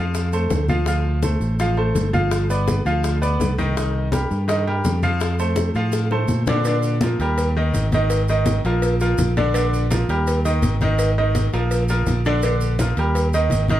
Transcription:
Already playing: fingered electric bass F2, grand piano F3 F5
0.00 grand piano F4
0.15 high bongo, high conga, maracas
0.32 grand piano A3 A4 C5, high bongo, high conga, maracas
0.50 fingered electric bass D2, high bongo, low bongo, high conga, maracas
0.68 grand piano F3 F4 F5, high bongo, high conga, maracas
0.86 grand piano F3 F4 F5, high bongo, high conga, maracas
1.05 high conga
1.23 grand piano A3 A4 C5, high bongo, high conga, maracas
1.40 fingered electric bass A1, high bongo, high conga, maracas
1.59 grand piano F3 F4 F5, high bongo, high conga, maracas
1.77 grand piano A3 A4 C5, high bongo, high conga
1.95 fingered electric bass G1, high bongo, low bongo, high conga, maracas
2.13 grand piano F3 F4 F5, high bongo, high conga, maracas
2.31 high bongo, high conga, maracas
2.50 grand piano B3 B4 D5, high conga, maracas
2.68 high bongo, high conga, maracas
2.86 fingered electric bass D2, grand piano F3 F4 F5, high bongo, high conga, maracas
3.04 high bongo, high conga, maracas
3.22 grand piano B3 B4 D5, high bongo, high conga, maracas
3.40 fingered electric bass C2, high bongo, low bongo, high conga, maracas
3.58 grand piano D#3 D#4 D#5, high bongo, high conga, maracas
3.77 grand piano D#3 D#4 D#5, high bongo, maracas
3.95 high conga
4.12 grand piano G3 G4 A#4, high bongo, high conga, maracas
4.31 fingered electric bass G2, high bongo, high conga, maracas
4.48 grand piano D#3 D#4 D#5, high bongo, high conga, maracas
4.67 grand piano G3 G4 A#4, high bongo, high conga
4.84 fingered electric bass F2, high bongo, low bongo, high conga, maracas
5.03 grand piano F3 F4 F5, high bongo, high conga, maracas
5.20 high bongo, high conga, maracas
5.39 grand piano A3 A4 C5, high conga, maracas
5.56 high bongo, high conga, maracas
5.74 fingered electric bass A2, grand piano F3 F4 F5, high bongo, high conga, maracas
5.92 high bongo, high conga, maracas
6.11 grand piano A3 A4 C5, low bongo, high conga
6.28 fingered electric bass A#2, high conga, maracas
6.46 grand piano D3 D4 D5, low bongo, high conga, maracas
6.65 grand piano D3 D4 D5, cowbell, high conga, maracas
6.83 high conga, maracas
7.01 grand piano F3 F4 A#4, cowbell, high conga, maracas
7.19 fingered electric bass D#2, grand piano G3 G4 A#4, cowbell, high conga, maracas
7.37 cowbell, high conga, maracas
7.56 grand piano D#3 D#4 D#5, high conga
7.74 fingered electric bass G#1, cowbell, high conga, maracas
7.92 grand piano D#3 D#4 D#5, cowbell, high conga, maracas
8.10 cowbell, high conga, maracas
8.28 grand piano D#3 D#4 D#5, high conga, maracas
8.46 cowbell, high conga, maracas
8.64 fingered electric bass A#1, grand piano F3 F4 A#4, cowbell, high conga, maracas
8.82 cowbell, high conga, maracas
9.00 grand piano F3 F4 A#4, high conga, maracas
9.18 fingered electric bass A#1, cowbell, high conga, maracas
9.37 grand piano D3 D4 D5, cowbell, high conga, maracas
9.54 grand piano D3 D4 D5, cowbell, high conga, maracas
9.73 high conga, maracas
9.91 grand piano F3 F4 A#4, cowbell, high conga, maracas
10.09 fingered electric bass D#2, grand piano G3 G4 A#4, cowbell, high conga, maracas
10.27 cowbell, high conga, maracas
10.45 grand piano D#3 D#4 D#5, high conga, maracas
10.62 fingered electric bass G#1, cowbell, high conga, maracas
10.81 grand piano D#3 D#4 D#5, cowbell, high conga, maracas
10.99 cowbell, high conga, maracas
11.17 grand piano D#3 D#4 D#5, high conga
11.35 cowbell, high conga, maracas
11.53 fingered electric bass A#1, grand piano F3 F4 A#4, cowbell, high conga, maracas
11.71 cowbell, high conga, maracas
11.88 grand piano F3 F4 A#4, high conga, maracas
12.06 fingered electric bass A#1, cowbell, high conga, maracas
12.25 grand piano D3 D4 D5, cowbell, maracas
12.42 grand piano D3 D4 D5, cowbell, high conga, maracas
12.61 high conga, maracas
12.79 grand piano F3 F4 A#4, cowbell, high conga, maracas
12.97 fingered electric bass D#2, grand piano G3 G4 A#4, cowbell, high conga, maracas
13.15 cowbell, high conga, maracas
13.32 grand piano D#3 D#4 D#5, high conga, maracas
13.50 fingered electric bass G#1, cowbell, high conga, maracas
13.68 grand piano D#3 D#4 D#5, cowbell, high conga, maracas

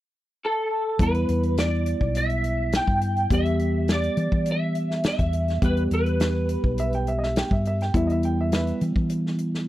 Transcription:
0.45 clean electric guitar A4
0.99 fingered electric bass E2, tine electric piano G3 B3 E4, clean electric guitar B4, kick, closed hi-hat
1.14 closed hi-hat
1.29 fingered electric bass E2, closed hi-hat
1.43 closed hi-hat
1.57 clean electric guitar D5, snare, closed hi-hat
1.86 closed hi-hat
2.01 fingered electric bass B1, kick
2.15 clean electric guitar E5, closed hi-hat
2.30 closed hi-hat
2.44 closed hi-hat
2.72 clean electric guitar G5, snare, closed hi-hat
2.87 fingered electric bass G2, kick
3.01 closed hi-hat
3.16 closed hi-hat
3.30 fingered electric bass E2, tine electric piano G3 B3 G4, clean electric guitar E5, kick, closed hi-hat
3.46 closed hi-hat
3.59 closed hi-hat
3.88 clean electric guitar D5, snare, closed hi-hat
4.03 closed hi-hat
4.17 fingered electric bass E3, closed hi-hat
4.32 fingered electric bass E3, kick
4.46 closed hi-hat
4.51 clean electric guitar E5
4.75 closed hi-hat
4.91 snare
5.04 clean electric guitar E5, snare, closed hi-hat
5.19 fingered electric bass E2, kick, closed hi-hat
5.33 closed hi-hat
5.48 snare, closed hi-hat
5.62 fingered electric bass E2, tine electric piano G3 B3 G4, clean electric guitar B4, kick, closed hi-hat
5.77 closed hi-hat
5.91 fingered electric bass E2, clean electric guitar B4, closed hi-hat
6.06 closed hi-hat
6.20 snare, closed hi-hat
6.49 closed hi-hat
6.64 fingered electric bass B1, kick
6.78 upright piano E5, closed hi-hat
6.93 upright piano G5, closed hi-hat
7.07 upright piano E5, closed hi-hat
7.19 upright piano D#5
7.23 upright piano E5, snare
7.36 upright piano G5, snare, closed hi-hat
7.51 fingered electric bass G2, upright piano E5, kick
7.65 upright piano E5, closed hi-hat
7.81 upright piano G5, snare, closed hi-hat
7.94 fingered electric bass E2, tine electric piano G3 B3 E4, upright piano E5, kick, closed hi-hat
8.07 upright piano D#5, closed hi-hat
8.12 upright piano E5
8.23 upright piano G5, closed hi-hat
8.41 upright piano E5
8.52 upright piano B4 E5, snare, closed hi-hat
8.67 closed hi-hat
8.81 fingered electric bass E3, closed hi-hat
8.96 fingered electric bass E3, kick
9.10 closed hi-hat
9.26 snare
9.38 closed hi-hat
9.55 snare

